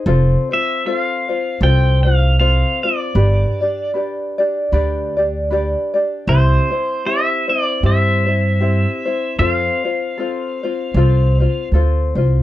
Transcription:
0.06 F1 C4 F4 A4 C5
0.51 C4 F4 C5 E5
0.86 C4 F4 A4 C5 E5
0.97 F5
1.29 C4 F4 C5
1.61 C2 C4 F4 A4 C5 G5
2.03 C4 F4 C5 F5
2.39 C4 F4 A4 C5 F5
2.83 C4 F4 C5 D5
3.15 G1 D4 G4 B4 D5
3.61 D4 G4 D5
3.94 D4 G4 B4 D5
4.38 D4 G4 D5
4.72 D2 D4 G4 B4 D5
5.17 D4 G4 D5
5.50 D4 G4 B4 D5
5.94 D4 G4 D5
6.27 C2 C4 E4 G4 C5
6.71 C4 E4 C5
7.06 C4 E4 G4 C5 E5
7.48 C4 E4 C5 D5
7.83 G2 C4 E4 G4 C5 E5
8.26 C4 E4 C5
8.60 C4 E4 G4 C5
9.05 C4 E4 C5
9.38 F2 C4 F4 A4 C5 F5
9.85 C4 F4 C5
10.18 C4 F4 A4 C5
10.63 C4 F4 C5
10.94 C2 C4 F4 A4 C5
11.40 C4 F4 C5
11.72 D2 C4 F4 A4 C5
12.15 C2 C4 F4 C5

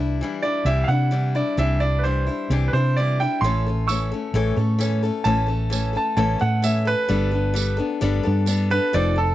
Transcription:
Already playing: C2 D4 E4
0.00 G3
0.21 E3 G3 D4 E4
0.43 G3 D4 E4 D5
0.65 C2 C3 E3 G3 D4 E4 E5
0.84 F5
0.88 C3 G3 D4 E4 F#5
1.11 E3 G3 D4 E4
1.35 G3 D4 E4 D5
1.57 C2 C3 E3 G3 D4 E4 E5
1.80 G3 D4 E4 D5
1.99 B4
2.03 E3 G3 D4 E4 C5
2.27 G3 D4 E4
2.50 C2 C3 E3 G3 D4 E4
2.68 B4
2.73 C3 G3 D4 E4 C5
2.97 E3 G3 D4 E4 D5
3.20 G3 D4 E4 G5
3.41 A1 A2 E3 A3 C#4 C6
3.46 A4
3.67 A3 C#4 A4
3.87 E3 A3 C#4 C#6 E6, tambourine
3.92 A4
4.12 A3 C#4 A4
4.34 A1 A2 E3 A3 C#4 A4
4.56 A2 A3 C#4 A4
4.78 E3 A3 C#4 A4, tambourine
5.03 A3 C#4 A4
5.24 A1 A2 E3 A3 C#4 A4 A5
5.46 A3 C#4 A4
5.70 E3 A3 C#4 A4, tambourine
5.93 A3 C#4 A4 A5
6.17 A1 A2 E3 A3 C#4 A4 A5
6.39 A2 A3 C#4 A4 F#5
6.62 E3 A3 C#4 A4 E5, tambourine
6.85 A3 C#4 A4 B4
7.08 G1 G3 B3 D4 A4
7.31 B3 D4 A4
7.54 G3 B3 D4 A4, tambourine
7.77 B3 D4 A4
8.01 G1 G3 B3 D4 A4
8.23 G2 B3 D4 A4
8.46 G3 B3 D4 A4, tambourine
8.70 B3 D4 A4 B4
8.93 F1 F3 C4 D#4 A4 D5
9.16 C4 D#4 A4

